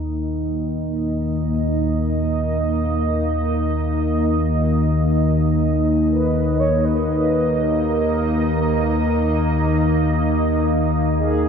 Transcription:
0, 0, Header, 1, 5, 480
1, 0, Start_track
1, 0, Tempo, 500000
1, 11027, End_track
2, 0, Start_track
2, 0, Title_t, "Singing bowl"
2, 0, Program_c, 0, 14
2, 0, Note_on_c, 0, 82, 57
2, 11027, Note_off_c, 0, 82, 0
2, 11027, End_track
3, 0, Start_track
3, 0, Title_t, "Soft synth lead"
3, 0, Program_c, 1, 80
3, 5865, Note_on_c, 1, 71, 94
3, 6333, Note_on_c, 1, 73, 107
3, 6347, Note_off_c, 1, 71, 0
3, 6575, Note_on_c, 1, 71, 102
3, 6589, Note_off_c, 1, 73, 0
3, 7314, Note_on_c, 1, 70, 101
3, 7329, Note_off_c, 1, 71, 0
3, 8774, Note_off_c, 1, 70, 0
3, 10730, Note_on_c, 1, 68, 92
3, 11027, Note_off_c, 1, 68, 0
3, 11027, End_track
4, 0, Start_track
4, 0, Title_t, "Ambient pad"
4, 0, Program_c, 2, 92
4, 0, Note_on_c, 2, 58, 75
4, 0, Note_on_c, 2, 63, 73
4, 0, Note_on_c, 2, 75, 70
4, 11027, Note_off_c, 2, 58, 0
4, 11027, Note_off_c, 2, 63, 0
4, 11027, Note_off_c, 2, 75, 0
4, 11027, End_track
5, 0, Start_track
5, 0, Title_t, "Synth drone"
5, 0, Program_c, 3, 95
5, 0, Note_on_c, 3, 39, 75
5, 0, Note_on_c, 3, 51, 70
5, 11027, Note_off_c, 3, 39, 0
5, 11027, Note_off_c, 3, 51, 0
5, 11027, End_track
0, 0, End_of_file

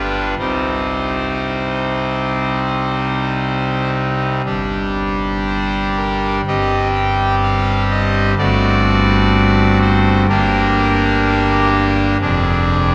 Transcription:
0, 0, Header, 1, 2, 480
1, 0, Start_track
1, 0, Key_signature, -3, "minor"
1, 0, Tempo, 1015228
1, 185, Time_signature, 4, 2, 24, 8
1, 2106, Tempo, 996678
1, 2107, Key_signature, -2, "minor"
1, 3066, Tempo, 958466
1, 6321, End_track
2, 0, Start_track
2, 0, Title_t, "Pipe organ"
2, 0, Program_c, 0, 19
2, 0, Note_on_c, 0, 31, 66
2, 0, Note_on_c, 0, 43, 62
2, 0, Note_on_c, 0, 55, 52
2, 0, Note_on_c, 0, 62, 53
2, 0, Note_on_c, 0, 65, 50
2, 0, Note_on_c, 0, 71, 100
2, 164, Note_off_c, 0, 43, 0
2, 165, Note_off_c, 0, 55, 0
2, 165, Note_off_c, 0, 62, 0
2, 166, Note_off_c, 0, 31, 0
2, 166, Note_off_c, 0, 65, 0
2, 166, Note_off_c, 0, 71, 0
2, 184, Note_on_c, 0, 36, 52
2, 184, Note_on_c, 0, 48, 54
2, 184, Note_on_c, 0, 60, 46
2, 185, Note_on_c, 0, 72, 82
2, 186, Note_on_c, 0, 55, 45
2, 188, Note_on_c, 0, 63, 41
2, 1846, Note_off_c, 0, 72, 0
2, 2088, Note_off_c, 0, 36, 0
2, 2088, Note_off_c, 0, 48, 0
2, 2088, Note_off_c, 0, 60, 0
2, 2089, Note_off_c, 0, 55, 0
2, 2090, Note_off_c, 0, 63, 0
2, 2106, Note_on_c, 0, 55, 48
2, 2106, Note_on_c, 0, 62, 50
2, 2107, Note_on_c, 0, 31, 54
2, 2107, Note_on_c, 0, 67, 49
2, 2108, Note_on_c, 0, 43, 57
2, 2593, Note_on_c, 0, 72, 85
2, 2796, Note_off_c, 0, 72, 0
2, 2832, Note_on_c, 0, 70, 72
2, 3033, Note_off_c, 0, 70, 0
2, 3047, Note_off_c, 0, 55, 0
2, 3047, Note_off_c, 0, 62, 0
2, 3048, Note_off_c, 0, 31, 0
2, 3048, Note_off_c, 0, 43, 0
2, 3048, Note_off_c, 0, 67, 0
2, 3075, Note_on_c, 0, 31, 59
2, 3076, Note_on_c, 0, 67, 50
2, 3077, Note_on_c, 0, 43, 57
2, 3077, Note_on_c, 0, 60, 50
2, 3078, Note_on_c, 0, 55, 48
2, 3078, Note_on_c, 0, 75, 93
2, 3281, Note_off_c, 0, 75, 0
2, 3319, Note_on_c, 0, 79, 94
2, 3521, Note_off_c, 0, 79, 0
2, 3558, Note_on_c, 0, 77, 104
2, 3758, Note_off_c, 0, 77, 0
2, 3794, Note_on_c, 0, 75, 105
2, 3996, Note_off_c, 0, 75, 0
2, 4014, Note_off_c, 0, 31, 0
2, 4015, Note_off_c, 0, 43, 0
2, 4015, Note_off_c, 0, 55, 0
2, 4015, Note_off_c, 0, 60, 0
2, 4015, Note_off_c, 0, 67, 0
2, 4035, Note_on_c, 0, 43, 72
2, 4035, Note_on_c, 0, 57, 57
2, 4037, Note_on_c, 0, 31, 69
2, 4037, Note_on_c, 0, 60, 58
2, 4037, Note_on_c, 0, 74, 116
2, 4038, Note_on_c, 0, 66, 59
2, 4737, Note_off_c, 0, 74, 0
2, 4753, Note_on_c, 0, 72, 111
2, 4958, Note_off_c, 0, 72, 0
2, 4977, Note_off_c, 0, 43, 0
2, 4977, Note_off_c, 0, 57, 0
2, 4978, Note_off_c, 0, 31, 0
2, 4978, Note_off_c, 0, 60, 0
2, 4978, Note_off_c, 0, 66, 0
2, 4990, Note_on_c, 0, 31, 69
2, 4990, Note_on_c, 0, 58, 63
2, 4990, Note_on_c, 0, 70, 101
2, 4991, Note_on_c, 0, 43, 72
2, 4991, Note_on_c, 0, 62, 63
2, 4992, Note_on_c, 0, 67, 62
2, 5693, Note_off_c, 0, 70, 0
2, 5931, Note_off_c, 0, 58, 0
2, 5932, Note_off_c, 0, 31, 0
2, 5932, Note_off_c, 0, 43, 0
2, 5932, Note_off_c, 0, 62, 0
2, 5932, Note_off_c, 0, 67, 0
2, 5950, Note_on_c, 0, 60, 66
2, 5952, Note_on_c, 0, 68, 63
2, 5953, Note_on_c, 0, 29, 77
2, 5955, Note_on_c, 0, 41, 82
2, 5956, Note_on_c, 0, 62, 67
2, 6321, Note_off_c, 0, 29, 0
2, 6321, Note_off_c, 0, 41, 0
2, 6321, Note_off_c, 0, 60, 0
2, 6321, Note_off_c, 0, 62, 0
2, 6321, Note_off_c, 0, 68, 0
2, 6321, End_track
0, 0, End_of_file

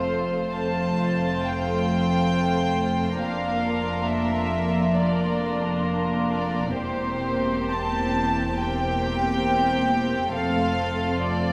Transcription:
0, 0, Header, 1, 6, 480
1, 0, Start_track
1, 0, Key_signature, -1, "major"
1, 0, Tempo, 1015228
1, 266, Tempo, 899550
1, 746, Tempo, 872093
1, 1704, Time_signature, 4, 2, 24, 8
1, 2186, Tempo, 891530
1, 3626, Tempo, 953895
1, 4106, Tempo, 875912
1, 6198, End_track
2, 0, Start_track
2, 0, Title_t, "Violin section"
2, 0, Program_c, 0, 48
2, 0, Note_on_c, 0, 72, 46
2, 260, Note_on_c, 0, 81, 51
2, 265, Note_off_c, 0, 72, 0
2, 742, Note_off_c, 0, 81, 0
2, 742, Note_on_c, 0, 79, 59
2, 1702, Note_off_c, 0, 79, 0
2, 1710, Note_on_c, 0, 77, 51
2, 2178, Note_off_c, 0, 77, 0
2, 2180, Note_on_c, 0, 76, 55
2, 2663, Note_off_c, 0, 76, 0
2, 2665, Note_on_c, 0, 74, 49
2, 3149, Note_off_c, 0, 74, 0
2, 3387, Note_on_c, 0, 74, 47
2, 3608, Note_off_c, 0, 74, 0
2, 3628, Note_on_c, 0, 72, 58
2, 4097, Note_off_c, 0, 72, 0
2, 4104, Note_on_c, 0, 81, 59
2, 4582, Note_on_c, 0, 79, 60
2, 4583, Note_off_c, 0, 81, 0
2, 5545, Note_off_c, 0, 79, 0
2, 5548, Note_on_c, 0, 77, 63
2, 6019, Note_off_c, 0, 77, 0
2, 6031, Note_on_c, 0, 74, 67
2, 6198, Note_off_c, 0, 74, 0
2, 6198, End_track
3, 0, Start_track
3, 0, Title_t, "Violin section"
3, 0, Program_c, 1, 48
3, 0, Note_on_c, 1, 65, 33
3, 0, Note_on_c, 1, 72, 36
3, 242, Note_off_c, 1, 65, 0
3, 244, Note_off_c, 1, 72, 0
3, 256, Note_on_c, 1, 72, 36
3, 257, Note_on_c, 1, 65, 38
3, 1676, Note_off_c, 1, 72, 0
3, 1677, Note_off_c, 1, 65, 0
3, 1697, Note_on_c, 1, 65, 33
3, 1701, Note_on_c, 1, 70, 36
3, 2643, Note_off_c, 1, 65, 0
3, 2645, Note_off_c, 1, 70, 0
3, 2670, Note_on_c, 1, 70, 37
3, 2673, Note_on_c, 1, 65, 40
3, 3608, Note_off_c, 1, 70, 0
3, 3610, Note_off_c, 1, 65, 0
3, 3631, Note_on_c, 1, 60, 42
3, 3631, Note_on_c, 1, 67, 38
3, 4567, Note_off_c, 1, 67, 0
3, 4574, Note_off_c, 1, 60, 0
3, 4581, Note_on_c, 1, 60, 45
3, 4583, Note_on_c, 1, 67, 48
3, 5525, Note_off_c, 1, 60, 0
3, 5526, Note_off_c, 1, 67, 0
3, 5548, Note_on_c, 1, 65, 39
3, 5551, Note_on_c, 1, 69, 38
3, 6198, Note_off_c, 1, 65, 0
3, 6198, Note_off_c, 1, 69, 0
3, 6198, End_track
4, 0, Start_track
4, 0, Title_t, "Viola section"
4, 0, Program_c, 2, 48
4, 0, Note_on_c, 2, 57, 37
4, 0, Note_on_c, 2, 60, 36
4, 246, Note_off_c, 2, 57, 0
4, 247, Note_off_c, 2, 60, 0
4, 269, Note_on_c, 2, 57, 40
4, 269, Note_on_c, 2, 60, 43
4, 1684, Note_off_c, 2, 57, 0
4, 1684, Note_off_c, 2, 60, 0
4, 1702, Note_on_c, 2, 58, 43
4, 1703, Note_on_c, 2, 62, 40
4, 2645, Note_off_c, 2, 58, 0
4, 2646, Note_off_c, 2, 62, 0
4, 2663, Note_on_c, 2, 62, 45
4, 2664, Note_on_c, 2, 58, 44
4, 3605, Note_off_c, 2, 58, 0
4, 3605, Note_off_c, 2, 62, 0
4, 3623, Note_on_c, 2, 58, 42
4, 3626, Note_on_c, 2, 60, 45
4, 4563, Note_off_c, 2, 58, 0
4, 4564, Note_off_c, 2, 60, 0
4, 4580, Note_on_c, 2, 58, 48
4, 4580, Note_on_c, 2, 60, 49
4, 5525, Note_off_c, 2, 58, 0
4, 5525, Note_off_c, 2, 60, 0
4, 5538, Note_on_c, 2, 57, 43
4, 5540, Note_on_c, 2, 60, 48
4, 6198, Note_off_c, 2, 57, 0
4, 6198, Note_off_c, 2, 60, 0
4, 6198, End_track
5, 0, Start_track
5, 0, Title_t, "Cello section"
5, 0, Program_c, 3, 48
5, 0, Note_on_c, 3, 41, 39
5, 1681, Note_off_c, 3, 41, 0
5, 1708, Note_on_c, 3, 41, 36
5, 3605, Note_off_c, 3, 41, 0
5, 3627, Note_on_c, 3, 40, 39
5, 5525, Note_off_c, 3, 40, 0
5, 5547, Note_on_c, 3, 41, 41
5, 6198, Note_off_c, 3, 41, 0
5, 6198, End_track
6, 0, Start_track
6, 0, Title_t, "Double bass section"
6, 0, Program_c, 4, 48
6, 0, Note_on_c, 4, 29, 36
6, 1682, Note_off_c, 4, 29, 0
6, 1707, Note_on_c, 4, 29, 36
6, 3605, Note_off_c, 4, 29, 0
6, 3630, Note_on_c, 4, 28, 43
6, 5527, Note_off_c, 4, 28, 0
6, 5540, Note_on_c, 4, 29, 43
6, 6198, Note_off_c, 4, 29, 0
6, 6198, End_track
0, 0, End_of_file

